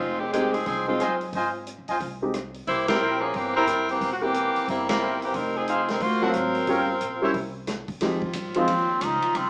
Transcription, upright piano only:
0.34 0.52 G#3 medium
0.34 0.53 C4 soft
0.34 0.53 D#4 soft
0.34 0.53 G4 medium
0.88 0.99 G#3 medium
0.88 0.99 C4 soft
0.88 0.99 D#4 soft
0.88 0.99 G#4 medium
2.22 2.33 G#3 medium
2.22 2.33 C4 soft
2.22 2.34 D#4 soft
2.22 2.34 G4 medium
2.88 3.00 A#3 soft
2.88 3.00 C4 soft
2.88 3.00 E4 soft
2.88 3.00 G4 soft
4.21 4.33 A#3 medium
4.21 4.33 C4 soft
4.21 4.33 E4 soft
4.21 4.34 G4 medium
6.21 6.65 F#3 medium
6.21 6.65 A#3 medium
6.21 6.66 C4 medium
6.21 6.66 F4 medium
6.68 6.87 G3 soft
6.68 6.87 A#3 soft
6.68 6.87 C#4 soft
6.68 6.87 F4 medium
7.21 7.33 G3 medium
7.21 7.33 A#3 medium
7.21 7.34 C#4 medium
7.21 7.34 E4 medium
8.02 8.20 F3 medium
8.02 8.20 G#3 soft
8.02 8.20 C4 soft
8.02 8.21 D#4 medium
8.02 8.21 G4 medium
8.56 8.67 F3 medium
8.56 8.67 G#3 medium
8.56 8.67 C4 medium
8.56 8.67 D#4 medium
8.56 8.67 F4 medium

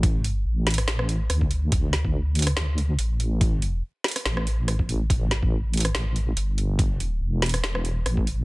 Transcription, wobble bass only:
0.00 0.19 A1 loud
0.19 0.44 G#1 loud
0.45 1.28 A1 medium
1.30 1.71 D2 loud
1.72 2.55 D2 loud
2.57 2.97 D2 medium
2.99 3.82 A1 loud
4.26 5.09 A1 loud
5.10 5.93 A1 loud
5.94 6.35 A1 loud
6.37 7.20 G1 loud
7.21 8.04 E1 loud
8.06 8.44 A1 loud

